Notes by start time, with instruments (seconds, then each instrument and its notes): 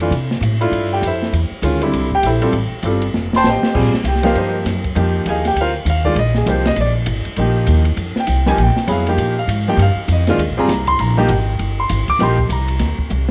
Already playing: upright bass F2
0.00 grand piano E3 A3 D4 F4, ride
0.11 upright bass C3, ride
0.31 snare
0.41 upright bass A2, hi-hat pedal, ride
0.61 grand piano A3 D4 E4 F4, ride
0.71 upright bass G2, ride
0.93 grand piano G4 G5
1.02 upright bass F2, hi-hat pedal, ride
1.06 grand piano E4 A4 C5 E5
1.23 snare
1.33 upright bass E2, ride
1.51 muted upright bass stroke
1.62 upright bass D2, grand piano D#3 G#3 C#4 F4, hi-hat pedal, ride
1.81 grand piano D3 G3 C4 E4, ride
1.93 upright bass C2, ride
2.12 grand piano G4 G5, kick
2.23 upright bass A#1, grand piano E4 A4 C5 E5, hi-hat pedal, ride
2.41 grand piano G3 C4 F4 A4, ride
2.52 upright bass A1, ride
2.72 muted upright bass stroke
2.83 upright bass G1, grand piano G3 C4 F4 A4, hi-hat pedal, ride
3.02 ride
3.14 upright bass F1, snare
3.33 grand piano C5 G5 A5 C6, snare
3.44 upright bass A1, snare, hi-hat pedal
3.49 grand piano G4 C5 D#5 G5
3.62 muted upright bass stroke, snare
3.74 upright bass A#1, grand piano G3 C4 F4 G#4, kick, crash
3.93 muted upright bass stroke, snare
4.04 upright bass C2, hi-hat pedal, ride
4.08 grand piano G4 G5
4.16 snare
4.23 grand piano F3 A#3 D#4 F4 G4 A#4 C5 F5, snare, ride
4.35 upright bass G2, grand piano D#4 A#4 C5 D#5, ride
4.65 upright bass F#2, snare, hi-hat pedal, ride
4.84 kick, ride
4.95 upright bass F2, grand piano F3 A#3 D#4 G4, ride
5.26 upright bass D#2, grand piano G#4 G#5, hi-hat pedal, ride
5.30 grand piano D#5 F5
5.45 grand piano G4 G5, snare, ride
5.55 upright bass D2, ride
5.61 grand piano F4 A#4 C5 F5
5.85 upright bass D#2, hi-hat pedal, ride
5.90 grand piano F5
6.05 grand piano D#3 G#3 D4 F4 D5, kick
6.15 upright bass A#1, grand piano D#5, ride
6.34 grand piano G#4, snare
6.46 upright bass C2, grand piano F3 A#3 D#4 G4 C5, hi-hat pedal, ride
6.65 grand piano D#5, snare, ride
6.76 upright bass A#1, ride
6.81 grand piano D5
7.06 upright bass G#1, hi-hat pedal, ride
7.25 muted upright bass stroke, ride
7.36 upright bass A#1, grand piano F3 A#3 D#4 G4, ride
7.66 upright bass D#2, hi-hat pedal, ride
7.85 ride
7.97 upright bass F2, ride
8.16 grand piano G5, muted upright bass stroke, snare
8.27 upright bass C2, hi-hat pedal, ride
8.46 grand piano F3 A#3 D#4 G4 G#5, snare
8.58 upright bass A#1, ride
8.63 grand piano G5
8.76 muted upright bass stroke, snare
8.87 upright bass F2, grand piano F#3 B3 E4 G#4, hi-hat pedal, ride
8.92 grand piano F5
9.07 grand piano F3 A#3 D#4 G4, ride
9.17 upright bass A#2, ride
9.39 grand piano F5
9.47 upright bass G#2, hi-hat pedal, ride
9.68 grand piano F3 A#3 D#4 G4 G5
9.77 upright bass G2, ride
9.82 grand piano F5
9.96 muted upright bass stroke
10.08 upright bass F2, hi-hat pedal, ride
10.12 grand piano D#5
10.27 grand piano D#3 G#3 D4 F4, snare, ride
10.38 upright bass D#2, ride
10.49 upright bass A#1
10.57 upright bass G1, grand piano G3 C4 F4 G#4 A#5
10.68 upright bass C2, snare, hi-hat pedal, ride
10.87 grand piano C6, kick, ride
10.99 upright bass A#1, grand piano A#5, ride
11.17 grand piano F3 A#3 D#4 G4
11.28 upright bass G#1, grand piano F#5, hi-hat pedal, ride
11.33 grand piano G5
11.59 upright bass G1, ride
11.80 grand piano C6
11.89 upright bass G#1, hi-hat pedal, ride
12.08 grand piano D6, muted upright bass stroke, kick, ride
12.19 upright bass A#1, grand piano F3 A#3 D#4 G4, snare, ride
12.23 grand piano C6
12.38 kick
12.49 upright bass C2, grand piano A#5, hi-hat pedal, ride
12.68 ride
12.79 upright bass D2, snare, ride
12.98 muted upright bass stroke, kick
13.10 upright bass C2, hi-hat pedal